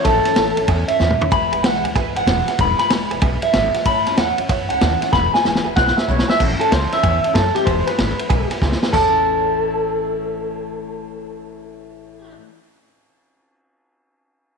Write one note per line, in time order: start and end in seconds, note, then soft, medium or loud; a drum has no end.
0.04 0.23 A1 medium
0.04 0.25 A2 medium
0.04 0.26 E3 medium
0.04 0.26 A3 loud
0.04 0.25 C#4 loud
0.04 0.24 E4 loud
0.04 0.66 A4 loud
0.04 0.18 C#5 loud
0.04 0.17 E5 medium
0.04 0.17 A5 loud
0.04 kick loud
0.04 snare soft
0.04 ride medium
0.25 0.36 A3 medium
0.25 0.37 C#4 medium
0.25 0.37 E4 medium
0.25 0.33 C#5 medium
0.25 0.32 E5 medium
0.25 muted upright bass stroke medium
0.25 snare soft
0.25 ride medium
0.36 0.54 A1 medium
0.36 0.57 A2 medium
0.36 0.57 E3 medium
0.36 0.58 A3 medium
0.36 0.56 C#4 medium
0.36 0.54 E4 medium
0.36 0.49 C#5 medium
0.36 0.49 E5 medium
0.36 0.49 A5 medium
0.36 snare loud
0.36 ride medium
0.56 0.67 A1 medium
0.56 0.67 A3 soft
0.56 0.68 C#4 medium
0.56 0.68 E4 medium
0.56 0.64 C#5 medium
0.56 0.64 E5 medium
0.56 0.64 A5 loud
0.56 ride medium
0.68 0.86 E2 medium
0.68 0.89 A3 medium
0.68 0.89 C#4 medium
0.68 0.87 E4 medium
0.68 0.81 C#5 loud
0.68 0.81 E5 loud
0.68 0.81 G#5 loud
0.68 kick loud
0.68 ride medium
0.88 0.99 A3 soft
0.88 0.99 C#4 soft
0.88 1.00 E4 medium
0.88 0.95 C#5 medium
0.88 1.30 E5 medium
0.88 0.96 E5 medium
0.88 muted upright bass stroke medium
0.88 ride medium
0.99 1.18 E2 medium
0.99 1.20 A2 medium
0.99 1.21 E3 medium
0.99 1.21 A3 medium
0.99 1.21 C#4 medium
0.99 1.19 E4 medium
0.99 1.13 C#5 medium
0.99 1.12 E5 medium
0.99 1.12 A5 medium
0.99 snare medium
1.10 mid tom medium
1.20 1.32 A3 soft
1.20 1.32 C#4 medium
1.20 1.32 E4 medium
1.20 1.27 C#5 medium
1.20 1.28 E5 medium
1.20 1.28 B5 medium
1.20 muted upright bass stroke medium
1.20 floor tom loud
1.31 1.50 E1 medium
1.31 1.52 E2 medium
1.31 1.52 B2 medium
1.31 1.53 E3 medium
1.31 1.53 G#3 medium
1.31 1.53 B3 medium
1.31 1.51 E4 loud
1.31 1.44 B4 medium
1.31 1.44 E5 medium
1.31 1.44 G#5 loud
1.31 1.63 B5 loud
1.31 kick loud
1.31 ride medium
1.52 1.62 G#1 medium
1.52 1.64 G#3 medium
1.52 1.64 B3 medium
1.52 1.64 E4 medium
1.52 1.59 B4 medium
1.52 1.59 E5 medium
1.52 1.59 G#5 medium
1.52 ride medium
1.56 1.63 E3 soft
1.63 1.81 B1 medium
1.63 1.84 E2 medium
1.63 1.84 B2 medium
1.63 1.85 E3 medium
1.63 1.85 G#3 medium
1.63 1.84 B3 medium
1.63 1.82 E4 medium
1.63 1.76 B4 medium
1.63 1.76 E5 medium
1.63 1.85 F#5 medium
1.63 1.76 G#5 medium
1.63 snare loud
1.63 ride medium
1.83 1.94 D2 medium
1.83 1.93 E3 soft
1.83 1.95 G#3 soft
1.83 1.96 B3 soft
1.83 1.95 E4 medium
1.83 1.91 B4 medium
1.83 1.91 E5 medium
1.83 1.91 G#5 medium
1.83 ride medium
1.95 2.13 C#2 medium
1.95 2.16 E3 medium
1.95 2.16 G#3 medium
1.95 2.16 B3 medium
1.95 2.15 E4 medium
1.95 2.08 B4 loud
1.95 2.08 E5 loud
1.95 2.08 G#5 loud
1.95 kick loud
1.95 snare soft
1.95 ride medium
2.16 2.26 G#1 loud
2.16 2.27 E3 soft
2.16 2.27 G#3 soft
2.16 2.28 B3 soft
2.16 2.27 E4 medium
2.16 2.23 B4 medium
2.16 2.23 E5 medium
2.16 2.58 F#5 medium
2.16 2.23 G#5 medium
2.16 ride medium
2.26 2.45 E1 loud
2.26 2.48 E2 medium
2.26 2.48 B2 medium
2.26 2.48 E3 medium
2.26 2.48 G#3 medium
2.26 2.47 B3 medium
2.26 2.46 E4 medium
2.26 2.39 B4 medium
2.26 2.39 E5 medium
2.26 2.39 B5 medium
2.26 snare loud
2.26 ride medium
2.47 2.58 E3 soft
2.47 2.58 G#3 medium
2.47 2.59 B3 medium
2.47 2.59 E4 medium
2.47 2.55 B4 medium
2.47 2.54 E5 medium
2.47 2.55 G#5 medium
2.47 muted upright bass stroke medium
2.47 snare soft
2.47 ride medium
2.58 2.77 E1 medium
2.58 2.79 E2 medium
2.58 2.80 B2 medium
2.58 2.80 E3 medium
2.58 2.80 G#3 medium
2.58 2.79 B3 medium
2.58 2.77 E4 loud
2.58 2.71 B4 medium
2.58 2.72 E5 medium
2.58 2.71 B5 loud
2.58 2.78 B5 loud
2.58 kick loud
2.58 ride medium
2.78 2.90 G#3 medium
2.78 2.91 B3 medium
2.78 2.90 E4 medium
2.78 2.86 B4 medium
2.78 2.86 E5 medium
2.78 2.86 G#5 medium
2.78 2.90 B5 loud
2.78 muted upright bass stroke medium
2.78 snare soft
2.78 ride medium
2.82 2.90 E3 soft
2.90 3.08 E1 medium
2.90 3.11 E2 medium
2.90 3.11 B2 medium
2.90 3.12 E3 medium
2.90 3.11 G#3 medium
2.90 3.10 B3 loud
2.90 3.09 E4 medium
2.90 3.03 B4 medium
2.90 3.03 E5 medium
2.90 3.03 G#5 medium
2.90 snare loud
2.90 ride medium
3.10 3.21 E1 medium
3.10 3.20 E3 soft
3.10 3.21 G#3 soft
3.10 3.22 B3 medium
3.10 3.22 E4 medium
3.10 3.18 B4 medium
3.10 3.18 E5 medium
3.10 3.18 G#5 loud
3.10 ride medium
3.22 3.40 B1 loud
3.22 3.43 G#3 medium
3.22 3.42 B3 medium
3.22 3.41 E4 medium
3.22 3.35 B4 loud
3.22 3.35 E5 loud
3.22 3.35 G#5 loud
3.22 kick loud
3.22 ride medium
3.42 3.54 E3 soft
3.42 3.54 G#3 soft
3.42 3.54 B3 soft
3.42 3.54 E4 medium
3.42 3.50 B4 medium
3.42 3.50 E5 medium
3.42 3.85 E5 medium
3.42 muted upright bass stroke medium
3.42 ride medium
3.53 3.72 G#1 medium
3.53 3.75 E2 medium
3.53 3.75 B2 medium
3.53 3.75 E3 medium
3.53 3.75 G#3 medium
3.53 3.74 B3 medium
3.53 3.72 E4 medium
3.53 3.66 B4 medium
3.53 3.66 E5 medium
3.53 3.66 G#5 medium
3.53 snare loud
3.53 ride medium
3.74 3.84 E3 medium
3.74 3.86 G#3 soft
3.74 3.86 B3 medium
3.74 3.86 E4 medium
3.74 3.81 B4 medium
3.74 3.81 E5 medium
3.74 3.81 F#5 medium
3.74 muted upright bass stroke medium
3.74 snare soft
3.74 ride medium
3.85 4.04 A1 medium
3.85 4.06 A2 medium
3.85 4.06 E3 medium
3.85 4.07 A3 loud
3.85 4.06 C#4 medium
3.85 4.04 E4 loud
3.85 3.99 C#5 loud
3.85 3.99 E5 medium
3.85 3.98 A5 loud
3.85 4.17 B5 loud
3.85 kick loud
3.85 ride medium
4.05 4.16 C#2 loud
4.05 4.17 A3 soft
4.05 4.18 C#4 soft
4.05 4.17 E4 medium
4.05 4.13 C#5 medium
4.05 4.14 E5 medium
4.05 4.13 A5 medium
4.05 snare soft
4.05 ride medium
4.17 4.36 E2 loud
4.17 4.38 A2 medium
4.17 4.38 E3 medium
4.17 4.39 A3 medium
4.17 4.38 C#4 medium
4.17 4.36 E4 medium
4.17 4.30 C#5 medium
4.17 4.30 E5 medium
4.17 4.38 F#5 loud
4.17 4.30 A5 medium
4.17 snare loud
4.17 ride medium
4.37 4.48 F#2 medium
4.37 4.49 A3 soft
4.37 4.50 C#4 soft
4.37 4.49 E4 soft
4.37 4.45 C#5 medium
4.37 4.45 E5 medium
4.37 4.45 F#5 medium
4.37 ride medium
4.49 4.68 F#2 medium
4.49 4.70 E3 medium
4.49 4.70 A3 medium
4.49 4.70 C#4 medium
4.49 4.69 E4 medium
4.49 4.62 C#5 loud
4.49 4.62 E5 loud
4.49 4.62 F#5 loud
4.49 kick loud
4.49 snare soft
4.49 ride medium
4.69 4.80 C#2 loud
4.69 4.82 A3 soft
4.69 4.82 C#4 soft
4.69 4.81 E4 soft
4.69 4.77 C#5 medium
4.69 4.77 E5 medium
4.69 5.11 F#5 medium
4.69 4.77 A5 medium
4.69 ride medium
4.81 4.99 D#2 medium
4.81 5.02 A2 medium
4.81 5.02 E3 medium
4.81 5.03 A3 medium
4.81 5.02 C#4 medium
4.81 5.01 E4 loud
4.81 4.93 C#5 medium
4.81 4.93 E5 medium
4.81 4.93 A5 medium
4.81 snare loud
4.81 ride medium
5.00 5.14 C#4 medium
5.00 5.13 E4 medium
5.00 5.08 C#5 medium
5.00 5.08 E5 medium
5.00 5.08 F#5 medium
5.00 muted upright bass stroke medium
5.00 snare soft
5.00 ride medium
5.05 5.15 A3 soft
5.12 5.31 E1 medium
5.12 5.34 E2 medium
5.12 5.35 B2 medium
5.12 5.35 E3 medium
5.12 5.35 G#3 medium
5.12 5.33 B3 medium
5.12 5.25 B4 medium
5.12 5.25 E5 medium
5.12 5.25 G#5 loud
5.12 5.33 B5 loud
5.12 kick loud
5.12 snare medium
5.16 5.32 E4 medium
5.32 5.45 G#3 soft
5.32 5.45 B3 soft
5.32 5.45 E4 medium
5.32 5.40 B4 medium
5.32 5.40 E5 medium
5.32 5.40 G#5 medium
5.32 5.45 G#5 loud
5.32 muted upright bass stroke medium
5.32 snare medium
5.37 5.45 E3 soft
5.44 5.62 E1 loud
5.44 5.65 E2 medium
5.44 5.66 B2 medium
5.44 5.66 E3 medium
5.44 5.65 G#3 medium
5.44 5.64 B3 medium
5.44 5.63 E4 medium
5.44 5.57 B4 medium
5.44 5.57 E5 medium
5.44 5.57 G#5 medium
5.44 snare medium
5.55 snare medium
5.64 5.75 E1 medium
5.64 5.74 E3 soft
5.64 5.76 G#3 soft
5.64 5.77 B3 medium
5.64 5.76 E4 medium
5.64 5.72 B4 medium
5.64 5.72 E5 medium
5.64 5.72 G#5 loud
5.75 5.94 B1 medium
5.75 5.96 E3 medium
5.75 5.97 G#3 medium
5.75 5.96 B3 medium
5.75 5.95 E4 medium
5.75 5.89 B4 loud
5.75 5.89 E5 loud
5.75 5.89 F#5 loud
5.75 5.97 F#5 medium
5.75 kick loud
5.75 snare medium
5.87 snare medium
5.97 6.08 E3 soft
5.97 6.09 G#3 soft
5.97 6.09 B3 soft
5.97 6.08 E4 soft
5.97 6.04 B4 medium
5.97 6.04 E5 medium
5.97 6.08 E5 medium
5.97 6.04 F#5 medium
5.97 muted upright bass stroke medium
5.97 snare medium
6.07 6.26 B1 medium
6.07 6.29 E2 medium
6.07 6.29 B2 medium
6.07 6.29 E3 medium
6.07 6.30 G#3 medium
6.07 6.29 B3 loud
6.07 6.28 E4 medium
6.07 6.20 B4 medium
6.07 6.28 C#5 medium
6.07 6.20 E5 medium
6.07 6.20 B5 medium
6.19 snare loud
6.28 6.41 G#3 soft
6.28 6.41 B3 soft
6.28 6.40 E4 medium
6.28 6.35 B4 medium
6.28 6.35 E5 medium
6.28 6.40 E5 loud
6.28 6.35 G#5 medium
6.28 muted upright bass stroke medium
6.28 snare loud
6.39 6.59 A1 medium
6.39 6.60 A2 medium
6.39 6.61 E3 medium
6.39 6.61 A3 medium
6.39 6.61 C#4 loud
6.39 6.59 E4 medium
6.39 6.52 C#5 medium
6.39 6.52 E5 medium
6.39 6.52 A5 loud
6.39 kick loud
6.39 crash loud
6.59 6.72 C#4 medium
6.59 6.71 E4 medium
6.59 6.73 A4 medium
6.59 6.67 C#5 medium
6.59 6.67 E5 medium
6.59 6.67 G#5 medium
6.59 muted upright bass stroke medium
6.59 ride medium
6.63 6.72 A3 soft
6.71 6.91 C#2 medium
6.71 6.92 E3 medium
6.71 6.92 C#4 medium
6.71 6.91 E4 medium
6.71 6.92 C5 medium
6.71 6.84 C#5 medium
6.71 6.84 E5 medium
6.71 6.84 A5 medium
6.71 snare loud
6.71 ride medium
6.91 7.04 C#4 soft
6.91 7.03 E4 medium
6.91 6.99 C#5 medium
6.91 6.98 E5 medium
6.91 7.34 E5 medium
6.91 6.99 B5 medium
6.91 muted upright bass stroke medium
6.91 snare soft
6.91 ride medium
6.95 7.04 A3 soft
7.03 7.22 E2 loud
7.03 7.24 A2 medium
7.03 7.24 E3 medium
7.03 7.25 A3 medium
7.03 7.25 C#4 medium
7.03 7.23 E4 medium
7.03 7.16 C#5 loud
7.03 7.16 E5 medium
7.03 7.15 G#5 loud
7.03 kick loud
7.03 ride medium
7.24 7.35 A3 soft
7.24 7.36 C#4 soft
7.24 7.35 E4 soft
7.24 7.31 C#5 medium
7.24 7.31 E5 medium
7.24 7.31 A5 medium
7.24 muted upright bass stroke medium
7.24 ride medium
7.34 7.54 F#2 loud
7.34 7.56 A3 medium
7.34 7.56 C#4 medium
7.34 7.55 A4 medium
7.34 7.47 C#5 medium
7.34 7.48 A5 medium
7.34 kick medium
7.34 snare loud
7.34 ride medium
7.39 7.54 E4 medium
7.55 7.68 A3 soft
7.55 7.68 C#4 medium
7.55 7.67 E4 medium
7.55 7.66 G4 medium
7.55 7.62 C#5 medium
7.55 7.62 E5 medium
7.55 7.62 A5 medium
7.55 muted upright bass stroke medium
7.55 snare soft
7.55 ride medium
7.65 7.86 E1 medium
7.65 7.88 E2 medium
7.65 7.88 B2 medium
7.65 7.88 E3 medium
7.65 7.88 G#3 medium
7.65 7.88 B3 medium
7.65 7.79 B4 medium
7.65 7.86 C5 medium
7.65 7.79 E5 medium
7.65 7.79 G#5 loud
7.65 kick loud
7.65 ride medium
7.70 7.86 E4 loud
7.86 7.98 G#3 soft
7.86 7.99 B3 medium
7.86 7.98 E4 medium
7.86 8.48 B4 loud
7.86 7.94 B4 medium
7.86 7.94 E5 medium
7.86 7.94 G#5 medium
7.86 muted upright bass stroke medium
7.86 snare soft
7.86 ride medium
7.91 7.97 E3 soft
7.98 8.17 G#1 medium
7.98 8.19 E3 medium
7.98 8.19 G#3 medium
7.98 8.19 B3 medium
7.98 8.18 E4 medium
7.98 8.11 B4 medium
7.98 8.11 E5 medium
7.98 8.11 B5 medium
7.98 snare loud
7.98 ride medium
8.18 8.30 G#3 soft
8.18 8.31 B3 medium
8.18 8.30 E4 soft
8.18 8.25 B4 medium
8.18 8.25 E5 medium
8.18 8.25 B5 medium
8.18 muted upright bass stroke medium
8.18 ride medium
8.22 8.30 E3 soft
8.29 8.49 B1 medium
8.29 8.51 E2 medium
8.29 8.51 B2 medium
8.29 8.51 E3 medium
8.29 8.51 G#3 medium
8.29 8.50 B3 medium
8.29 8.49 E4 medium
8.29 8.42 B4 loud
8.29 8.42 E5 loud
8.29 8.42 G#5 loud
8.29 kick loud
8.29 ride medium
8.50 8.60 E3 soft
8.50 8.61 G#3 medium
8.50 8.62 B3 medium
8.50 8.61 E4 medium
8.50 8.57 B4 medium
8.50 8.58 E5 medium
8.50 8.58 G#5 medium
8.50 muted upright bass stroke medium
8.50 snare soft
8.50 ride medium
8.61 8.81 C#2 medium
8.61 8.82 E3 medium
8.61 8.82 G#3 medium
8.61 8.82 B3 medium
8.61 8.80 E4 medium
8.61 8.74 B4 medium
8.61 8.74 E5 medium
8.61 8.74 G#5 medium
8.61 kick medium
8.61 snare medium
8.72 snare medium
8.81 8.93 E3 soft
8.81 8.94 G#3 soft
8.81 8.94 B3 medium
8.81 8.93 E4 medium
8.81 8.89 B4 medium
8.81 8.89 E5 medium
8.81 8.89 G#5 loud
8.81 muted upright bass stroke medium
8.81 snare loud
8.87 12.37 A2 medium
8.92 12.33 A1 medium
8.92 12.44 E3 medium
8.92 12.33 A4 loud
8.92 12.32 C#5 medium
8.92 12.33 E5 medium
8.92 kick medium
8.92 floor tom medium
8.92 splash medium
8.96 12.49 A3 medium
8.96 12.36 A5 medium
9.04 12.54 C#4 medium
9.08 12.58 E4 medium